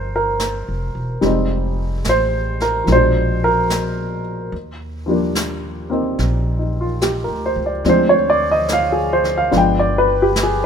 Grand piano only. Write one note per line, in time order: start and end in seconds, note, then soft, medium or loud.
0.00 1.23 D#3 soft
0.00 1.23 F3 soft
0.00 1.24 A#3 soft
0.00 1.24 D4 soft
0.00 0.16 A#4 medium
0.00 1.25 C5 medium
0.16 0.93 A#4 medium
1.21 2.87 G3 soft
1.21 2.87 G#3 soft
1.21 2.89 C4 soft
1.26 2.89 D#4 medium
2.09 2.61 C5 medium
2.62 2.88 A#4 medium
2.84 4.50 F3 soft
2.88 4.54 B2 soft
2.88 4.52 G#3 soft
2.92 4.55 D4 soft
2.92 3.43 C5 medium
3.44 4.21 A#4 medium
5.06 7.84 F3 soft
5.06 7.84 G3 soft
5.06 5.88 A#3 soft
5.11 7.85 D4 soft
5.90 7.84 A#3 soft
5.90 7.85 C4 soft
5.90 6.57 D#4 soft
6.59 6.85 D#4 soft
6.81 7.09 F4 soft
7.02 7.40 G4 soft
7.24 7.58 A#4 soft
7.46 7.70 C5 soft
7.66 7.94 D5 soft
7.86 9.50 F3 soft
7.86 9.50 G#3 soft
7.86 9.53 C4 soft
7.86 9.51 D4 medium
7.86 8.14 C5 medium
8.09 8.38 C#5 medium
8.30 8.48 D5 medium
8.51 8.66 D#5 medium
8.73 8.97 F5 medium
8.92 9.21 G#4 medium
9.13 9.32 C5 medium
9.38 9.51 F5 medium
9.51 10.66 F3 soft
9.51 10.66 G#3 soft
9.51 10.66 B3 soft
9.51 10.66 D4 medium
9.58 9.82 G5 medium
9.79 10.07 D5 medium
9.98 10.16 B4 medium
10.22 10.36 G4 medium
10.43 10.66 G#4 medium